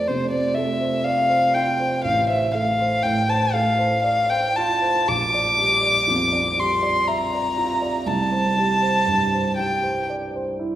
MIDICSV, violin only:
0, 0, Header, 1, 2, 480
1, 0, Start_track
1, 0, Key_signature, -1, "major"
1, 0, Tempo, 988468
1, 991, Time_signature, 3, 2, 24, 8
1, 1476, Tempo, 1025641
1, 2436, Tempo, 1000000
1, 5154, End_track
2, 0, Start_track
2, 0, Title_t, "Violin"
2, 0, Program_c, 0, 40
2, 37, Note_on_c, 0, 72, 41
2, 149, Note_off_c, 0, 72, 0
2, 151, Note_on_c, 0, 74, 46
2, 265, Note_on_c, 0, 76, 50
2, 272, Note_off_c, 0, 74, 0
2, 506, Note_on_c, 0, 77, 57
2, 513, Note_off_c, 0, 76, 0
2, 749, Note_on_c, 0, 79, 51
2, 756, Note_off_c, 0, 77, 0
2, 991, Note_off_c, 0, 79, 0
2, 994, Note_on_c, 0, 77, 53
2, 1111, Note_off_c, 0, 77, 0
2, 1115, Note_on_c, 0, 76, 48
2, 1232, Note_off_c, 0, 76, 0
2, 1234, Note_on_c, 0, 77, 50
2, 1471, Note_on_c, 0, 79, 55
2, 1478, Note_off_c, 0, 77, 0
2, 1594, Note_on_c, 0, 81, 54
2, 1601, Note_off_c, 0, 79, 0
2, 1707, Note_on_c, 0, 77, 48
2, 1714, Note_off_c, 0, 81, 0
2, 1937, Note_off_c, 0, 77, 0
2, 1939, Note_on_c, 0, 77, 54
2, 2065, Note_on_c, 0, 79, 55
2, 2072, Note_off_c, 0, 77, 0
2, 2188, Note_on_c, 0, 81, 54
2, 2195, Note_off_c, 0, 79, 0
2, 2431, Note_on_c, 0, 86, 66
2, 2438, Note_off_c, 0, 81, 0
2, 3157, Note_on_c, 0, 84, 54
2, 3164, Note_off_c, 0, 86, 0
2, 3391, Note_on_c, 0, 82, 58
2, 3398, Note_off_c, 0, 84, 0
2, 3864, Note_on_c, 0, 81, 58
2, 3871, Note_off_c, 0, 82, 0
2, 4581, Note_off_c, 0, 81, 0
2, 4584, Note_on_c, 0, 79, 44
2, 4824, Note_off_c, 0, 79, 0
2, 5154, End_track
0, 0, End_of_file